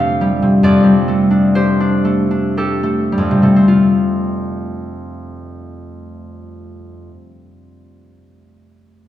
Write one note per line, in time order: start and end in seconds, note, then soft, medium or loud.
0.00 0.62 F2 medium
0.00 0.41 C3 soft
0.00 1.72 F3 soft
0.00 1.07 A3 soft
0.00 1.29 D4 soft
0.00 1.35 F4 soft
0.00 1.55 G4 soft
0.00 1.36 A4 medium
0.00 1.54 C5 medium
0.00 3.68 F5 medium
0.21 0.82 G3 soft
0.42 3.30 C3 soft
0.63 3.16 F2 soft
0.63 3.71 D5 medium
0.84 3.11 G3 soft
1.08 2.04 A3 soft
1.31 1.79 D4 soft
1.55 2.56 G4 soft
1.55 5.45 C5 medium
1.80 2.30 D4 soft
2.05 2.82 A3 soft
2.31 3.71 D4 soft
2.57 3.71 G4 soft
2.57 6.48 A4 soft
2.83 3.42 A3 soft
3.12 3.71 G3 soft
3.18 7.08 F2 soft
3.31 3.42 C3 soft
3.42 3.72 C3 soft
3.42 6.76 A3 soft
3.56 6.81 C4 soft
3.68 6.93 F4 soft